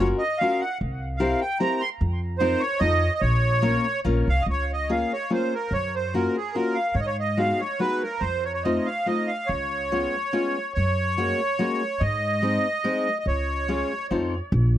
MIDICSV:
0, 0, Header, 1, 4, 480
1, 0, Start_track
1, 0, Key_signature, -5, "minor"
1, 0, Tempo, 404040
1, 942, Time_signature, 3, 2, 24, 8
1, 4302, Tempo, 416378
1, 5274, Key_signature, -5, "major"
1, 9102, Tempo, 420757
1, 17082, End_track
2, 0, Start_track
2, 0, Title_t, "Accordion"
2, 0, Program_c, 0, 21
2, 218, Note_on_c, 0, 75, 77
2, 449, Note_on_c, 0, 77, 83
2, 460, Note_off_c, 0, 75, 0
2, 716, Note_on_c, 0, 78, 67
2, 721, Note_off_c, 0, 77, 0
2, 924, Note_off_c, 0, 78, 0
2, 1395, Note_on_c, 0, 77, 63
2, 1668, Note_off_c, 0, 77, 0
2, 1674, Note_on_c, 0, 79, 62
2, 1878, Note_off_c, 0, 79, 0
2, 1894, Note_on_c, 0, 82, 77
2, 2146, Note_on_c, 0, 84, 90
2, 2155, Note_off_c, 0, 82, 0
2, 2247, Note_off_c, 0, 84, 0
2, 2831, Note_on_c, 0, 72, 79
2, 3084, Note_on_c, 0, 73, 98
2, 3106, Note_off_c, 0, 72, 0
2, 3321, Note_on_c, 0, 75, 105
2, 3328, Note_off_c, 0, 73, 0
2, 3723, Note_off_c, 0, 75, 0
2, 3741, Note_on_c, 0, 75, 77
2, 3810, Note_on_c, 0, 73, 94
2, 3817, Note_off_c, 0, 75, 0
2, 4736, Note_off_c, 0, 73, 0
2, 5076, Note_on_c, 0, 77, 75
2, 5219, Note_on_c, 0, 75, 74
2, 5236, Note_off_c, 0, 77, 0
2, 5274, Note_off_c, 0, 75, 0
2, 5317, Note_on_c, 0, 73, 79
2, 5561, Note_off_c, 0, 73, 0
2, 5582, Note_on_c, 0, 75, 66
2, 5785, Note_on_c, 0, 77, 57
2, 5786, Note_off_c, 0, 75, 0
2, 6034, Note_off_c, 0, 77, 0
2, 6040, Note_on_c, 0, 73, 72
2, 6256, Note_off_c, 0, 73, 0
2, 6268, Note_on_c, 0, 72, 61
2, 6515, Note_off_c, 0, 72, 0
2, 6520, Note_on_c, 0, 70, 63
2, 6732, Note_on_c, 0, 73, 84
2, 6734, Note_off_c, 0, 70, 0
2, 6985, Note_off_c, 0, 73, 0
2, 6989, Note_on_c, 0, 72, 62
2, 7203, Note_on_c, 0, 70, 58
2, 7206, Note_off_c, 0, 72, 0
2, 7459, Note_off_c, 0, 70, 0
2, 7468, Note_on_c, 0, 68, 64
2, 7666, Note_on_c, 0, 70, 65
2, 7685, Note_off_c, 0, 68, 0
2, 7905, Note_on_c, 0, 77, 73
2, 7930, Note_off_c, 0, 70, 0
2, 8139, Note_on_c, 0, 73, 83
2, 8142, Note_off_c, 0, 77, 0
2, 8198, Note_on_c, 0, 75, 62
2, 8200, Note_off_c, 0, 73, 0
2, 8266, Note_off_c, 0, 75, 0
2, 8270, Note_on_c, 0, 73, 85
2, 8389, Note_off_c, 0, 73, 0
2, 8425, Note_on_c, 0, 75, 66
2, 8641, Note_off_c, 0, 75, 0
2, 8642, Note_on_c, 0, 77, 71
2, 8893, Note_on_c, 0, 73, 76
2, 8897, Note_off_c, 0, 77, 0
2, 9117, Note_off_c, 0, 73, 0
2, 9120, Note_on_c, 0, 71, 83
2, 9376, Note_off_c, 0, 71, 0
2, 9384, Note_on_c, 0, 70, 64
2, 9578, Note_on_c, 0, 72, 77
2, 9602, Note_off_c, 0, 70, 0
2, 9848, Note_off_c, 0, 72, 0
2, 9858, Note_on_c, 0, 73, 72
2, 9944, Note_off_c, 0, 73, 0
2, 9961, Note_on_c, 0, 73, 70
2, 10074, Note_on_c, 0, 75, 57
2, 10075, Note_off_c, 0, 73, 0
2, 10327, Note_on_c, 0, 77, 73
2, 10341, Note_off_c, 0, 75, 0
2, 10563, Note_off_c, 0, 77, 0
2, 10570, Note_on_c, 0, 75, 73
2, 10802, Note_on_c, 0, 77, 61
2, 10833, Note_off_c, 0, 75, 0
2, 11019, Note_on_c, 0, 73, 78
2, 11044, Note_off_c, 0, 77, 0
2, 12457, Note_off_c, 0, 73, 0
2, 12474, Note_on_c, 0, 73, 84
2, 13912, Note_on_c, 0, 75, 85
2, 13944, Note_off_c, 0, 73, 0
2, 15255, Note_off_c, 0, 75, 0
2, 15273, Note_on_c, 0, 75, 57
2, 15346, Note_off_c, 0, 75, 0
2, 15362, Note_on_c, 0, 73, 72
2, 16269, Note_off_c, 0, 73, 0
2, 17082, End_track
3, 0, Start_track
3, 0, Title_t, "Steel-string acoustic guitar"
3, 0, Program_c, 1, 25
3, 0, Note_on_c, 1, 61, 60
3, 1, Note_on_c, 1, 65, 61
3, 6, Note_on_c, 1, 66, 57
3, 12, Note_on_c, 1, 70, 58
3, 251, Note_off_c, 1, 61, 0
3, 251, Note_off_c, 1, 65, 0
3, 252, Note_off_c, 1, 66, 0
3, 253, Note_off_c, 1, 70, 0
3, 486, Note_on_c, 1, 61, 47
3, 487, Note_on_c, 1, 65, 47
3, 493, Note_on_c, 1, 66, 54
3, 502, Note_on_c, 1, 70, 62
3, 731, Note_off_c, 1, 65, 0
3, 732, Note_off_c, 1, 66, 0
3, 733, Note_off_c, 1, 61, 0
3, 734, Note_off_c, 1, 70, 0
3, 1425, Note_on_c, 1, 67, 53
3, 1425, Note_on_c, 1, 70, 64
3, 1429, Note_on_c, 1, 60, 55
3, 1432, Note_on_c, 1, 64, 58
3, 1674, Note_off_c, 1, 70, 0
3, 1675, Note_off_c, 1, 67, 0
3, 1677, Note_off_c, 1, 60, 0
3, 1677, Note_off_c, 1, 64, 0
3, 1900, Note_on_c, 1, 64, 42
3, 1902, Note_on_c, 1, 60, 55
3, 1907, Note_on_c, 1, 67, 46
3, 1908, Note_on_c, 1, 70, 60
3, 2150, Note_off_c, 1, 64, 0
3, 2152, Note_off_c, 1, 60, 0
3, 2153, Note_off_c, 1, 70, 0
3, 2155, Note_off_c, 1, 67, 0
3, 2855, Note_on_c, 1, 63, 62
3, 2858, Note_on_c, 1, 65, 55
3, 2861, Note_on_c, 1, 60, 64
3, 2866, Note_on_c, 1, 70, 70
3, 3110, Note_off_c, 1, 63, 0
3, 3110, Note_off_c, 1, 65, 0
3, 3113, Note_off_c, 1, 60, 0
3, 3115, Note_off_c, 1, 70, 0
3, 3325, Note_on_c, 1, 60, 51
3, 3327, Note_on_c, 1, 63, 55
3, 3336, Note_on_c, 1, 65, 48
3, 3338, Note_on_c, 1, 69, 56
3, 3589, Note_off_c, 1, 63, 0
3, 3590, Note_off_c, 1, 60, 0
3, 3595, Note_off_c, 1, 65, 0
3, 3595, Note_off_c, 1, 69, 0
3, 4300, Note_on_c, 1, 58, 64
3, 4306, Note_on_c, 1, 70, 76
3, 4307, Note_on_c, 1, 61, 62
3, 4310, Note_on_c, 1, 65, 53
3, 4559, Note_off_c, 1, 58, 0
3, 4559, Note_off_c, 1, 70, 0
3, 4562, Note_off_c, 1, 61, 0
3, 4562, Note_off_c, 1, 65, 0
3, 4791, Note_on_c, 1, 65, 53
3, 4793, Note_on_c, 1, 58, 64
3, 4796, Note_on_c, 1, 61, 55
3, 4803, Note_on_c, 1, 70, 75
3, 5050, Note_off_c, 1, 65, 0
3, 5052, Note_off_c, 1, 58, 0
3, 5052, Note_off_c, 1, 61, 0
3, 5053, Note_off_c, 1, 70, 0
3, 5769, Note_on_c, 1, 58, 50
3, 5770, Note_on_c, 1, 65, 45
3, 5772, Note_on_c, 1, 61, 48
3, 5775, Note_on_c, 1, 68, 57
3, 6019, Note_off_c, 1, 65, 0
3, 6020, Note_off_c, 1, 58, 0
3, 6020, Note_off_c, 1, 68, 0
3, 6021, Note_off_c, 1, 61, 0
3, 6241, Note_on_c, 1, 58, 49
3, 6241, Note_on_c, 1, 61, 42
3, 6247, Note_on_c, 1, 65, 44
3, 6247, Note_on_c, 1, 68, 52
3, 6493, Note_off_c, 1, 61, 0
3, 6495, Note_off_c, 1, 58, 0
3, 6497, Note_off_c, 1, 68, 0
3, 6498, Note_off_c, 1, 65, 0
3, 7205, Note_on_c, 1, 58, 45
3, 7212, Note_on_c, 1, 61, 44
3, 7213, Note_on_c, 1, 66, 62
3, 7214, Note_on_c, 1, 65, 45
3, 7454, Note_off_c, 1, 58, 0
3, 7454, Note_off_c, 1, 65, 0
3, 7455, Note_off_c, 1, 61, 0
3, 7457, Note_off_c, 1, 66, 0
3, 7677, Note_on_c, 1, 58, 44
3, 7680, Note_on_c, 1, 61, 44
3, 7686, Note_on_c, 1, 66, 56
3, 7689, Note_on_c, 1, 65, 43
3, 7928, Note_off_c, 1, 58, 0
3, 7928, Note_off_c, 1, 61, 0
3, 7933, Note_off_c, 1, 65, 0
3, 7933, Note_off_c, 1, 66, 0
3, 8626, Note_on_c, 1, 56, 51
3, 8629, Note_on_c, 1, 63, 49
3, 8632, Note_on_c, 1, 59, 44
3, 8636, Note_on_c, 1, 66, 52
3, 8882, Note_off_c, 1, 63, 0
3, 8883, Note_off_c, 1, 56, 0
3, 8883, Note_off_c, 1, 66, 0
3, 8885, Note_off_c, 1, 59, 0
3, 9111, Note_on_c, 1, 56, 47
3, 9118, Note_on_c, 1, 66, 55
3, 9120, Note_on_c, 1, 63, 46
3, 9125, Note_on_c, 1, 59, 45
3, 9366, Note_off_c, 1, 56, 0
3, 9366, Note_off_c, 1, 66, 0
3, 9367, Note_off_c, 1, 59, 0
3, 9369, Note_off_c, 1, 63, 0
3, 10086, Note_on_c, 1, 57, 56
3, 10092, Note_on_c, 1, 60, 48
3, 10094, Note_on_c, 1, 65, 66
3, 10095, Note_on_c, 1, 63, 43
3, 10340, Note_off_c, 1, 57, 0
3, 10341, Note_off_c, 1, 60, 0
3, 10341, Note_off_c, 1, 63, 0
3, 10343, Note_off_c, 1, 65, 0
3, 10557, Note_on_c, 1, 57, 44
3, 10562, Note_on_c, 1, 60, 38
3, 10565, Note_on_c, 1, 63, 38
3, 10568, Note_on_c, 1, 65, 59
3, 10820, Note_off_c, 1, 57, 0
3, 10821, Note_off_c, 1, 63, 0
3, 10822, Note_off_c, 1, 60, 0
3, 10823, Note_off_c, 1, 65, 0
3, 11533, Note_on_c, 1, 56, 46
3, 11536, Note_on_c, 1, 65, 51
3, 11538, Note_on_c, 1, 61, 54
3, 11540, Note_on_c, 1, 59, 51
3, 11790, Note_off_c, 1, 65, 0
3, 11791, Note_off_c, 1, 56, 0
3, 11793, Note_off_c, 1, 59, 0
3, 11793, Note_off_c, 1, 61, 0
3, 12002, Note_on_c, 1, 56, 57
3, 12005, Note_on_c, 1, 61, 56
3, 12010, Note_on_c, 1, 65, 64
3, 12013, Note_on_c, 1, 59, 44
3, 12263, Note_off_c, 1, 56, 0
3, 12266, Note_off_c, 1, 59, 0
3, 12266, Note_off_c, 1, 61, 0
3, 12266, Note_off_c, 1, 65, 0
3, 12968, Note_on_c, 1, 56, 54
3, 12974, Note_on_c, 1, 66, 63
3, 12975, Note_on_c, 1, 58, 51
3, 12979, Note_on_c, 1, 61, 46
3, 13218, Note_off_c, 1, 56, 0
3, 13220, Note_off_c, 1, 66, 0
3, 13222, Note_off_c, 1, 58, 0
3, 13222, Note_off_c, 1, 61, 0
3, 13440, Note_on_c, 1, 58, 60
3, 13446, Note_on_c, 1, 56, 67
3, 13446, Note_on_c, 1, 61, 48
3, 13449, Note_on_c, 1, 66, 62
3, 13692, Note_off_c, 1, 58, 0
3, 13694, Note_off_c, 1, 61, 0
3, 13695, Note_off_c, 1, 56, 0
3, 13695, Note_off_c, 1, 66, 0
3, 14389, Note_on_c, 1, 56, 55
3, 14395, Note_on_c, 1, 68, 60
3, 14396, Note_on_c, 1, 60, 49
3, 14404, Note_on_c, 1, 63, 51
3, 14645, Note_off_c, 1, 56, 0
3, 14646, Note_off_c, 1, 68, 0
3, 14650, Note_off_c, 1, 60, 0
3, 14650, Note_off_c, 1, 63, 0
3, 14868, Note_on_c, 1, 63, 54
3, 14870, Note_on_c, 1, 56, 60
3, 14873, Note_on_c, 1, 60, 52
3, 14875, Note_on_c, 1, 68, 67
3, 15123, Note_off_c, 1, 63, 0
3, 15125, Note_off_c, 1, 56, 0
3, 15127, Note_off_c, 1, 60, 0
3, 15127, Note_off_c, 1, 68, 0
3, 15830, Note_on_c, 1, 56, 51
3, 15834, Note_on_c, 1, 61, 51
3, 15835, Note_on_c, 1, 68, 50
3, 15837, Note_on_c, 1, 65, 47
3, 16084, Note_off_c, 1, 56, 0
3, 16084, Note_off_c, 1, 68, 0
3, 16085, Note_off_c, 1, 61, 0
3, 16087, Note_off_c, 1, 65, 0
3, 16313, Note_on_c, 1, 60, 59
3, 16317, Note_on_c, 1, 63, 44
3, 16324, Note_on_c, 1, 65, 50
3, 16327, Note_on_c, 1, 69, 62
3, 16571, Note_off_c, 1, 60, 0
3, 16571, Note_off_c, 1, 63, 0
3, 16571, Note_off_c, 1, 69, 0
3, 16572, Note_off_c, 1, 65, 0
3, 17082, End_track
4, 0, Start_track
4, 0, Title_t, "Upright bass"
4, 0, Program_c, 2, 32
4, 0, Note_on_c, 2, 30, 84
4, 129, Note_off_c, 2, 30, 0
4, 961, Note_on_c, 2, 36, 75
4, 1572, Note_off_c, 2, 36, 0
4, 2385, Note_on_c, 2, 41, 82
4, 3006, Note_off_c, 2, 41, 0
4, 3337, Note_on_c, 2, 41, 81
4, 3650, Note_off_c, 2, 41, 0
4, 3819, Note_on_c, 2, 34, 66
4, 4453, Note_off_c, 2, 34, 0
4, 4793, Note_on_c, 2, 34, 60
4, 5025, Note_off_c, 2, 34, 0
4, 5054, Note_on_c, 2, 36, 65
4, 5254, Note_off_c, 2, 36, 0
4, 5273, Note_on_c, 2, 37, 66
4, 5898, Note_off_c, 2, 37, 0
4, 6708, Note_on_c, 2, 42, 67
4, 7330, Note_off_c, 2, 42, 0
4, 8135, Note_on_c, 2, 44, 68
4, 8762, Note_off_c, 2, 44, 0
4, 9587, Note_on_c, 2, 41, 69
4, 10219, Note_off_c, 2, 41, 0
4, 11050, Note_on_c, 2, 37, 65
4, 11677, Note_off_c, 2, 37, 0
4, 12503, Note_on_c, 2, 42, 69
4, 13113, Note_off_c, 2, 42, 0
4, 13921, Note_on_c, 2, 44, 79
4, 14540, Note_off_c, 2, 44, 0
4, 15346, Note_on_c, 2, 37, 72
4, 15970, Note_off_c, 2, 37, 0
4, 16315, Note_on_c, 2, 41, 73
4, 16626, Note_off_c, 2, 41, 0
4, 16786, Note_on_c, 2, 34, 92
4, 17082, Note_off_c, 2, 34, 0
4, 17082, End_track
0, 0, End_of_file